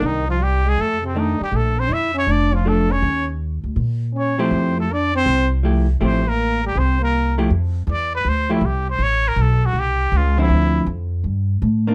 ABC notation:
X:1
M:4/4
L:1/8
Q:"Swing" 1/4=161
K:F
V:1 name="Muted trumpet"
_E F G _A =A C E G | A c e _d =d F A _d- | _d z4 z d c- | c A d c2 z3 |
c B2 G c B2 z | z2 d =B c E G c | ^c B A _G =G2 ^E =E- | E2 z6 |]
V:2 name="Trombone"
_E, F, G, _A, =A, C, E, G, | A, C E _D =D F, A, _D- | _D z4 z D C- | C A, D C2 z3 |
C B,2 G, C B,2 z | z8 | z8 | z8 |]
V:3 name="Hollow-body jazz guitar"
z6 [_E,A,D] z | z6 [F,A,D] z | z6 z [F,A,EG]- | [F,A,EG]2 z4 [F,A,EG] z |
[F,A,EG] z6 [F,A,EG] | z4 z [F,A,EG] z2 | z6 z [D,^E,^B,=E]- | [D,^E,^B,=E]2 z4 z [_E,_B,D] |]
V:4 name="Upright bass" clef=bass
C,,4 F,,3 z | B,,,2 F,,2 F,,,4 | _E,,3 D,, B,,4 | F,,4 C,,4 |
A,,,4 C,,4 | F,,2 E,,2 D,,2 C,,2 | A,,,2 =B,,,2 ^B,,,2 ^C,,2 | D,,2 F,,2 G,,2 A,,2 |]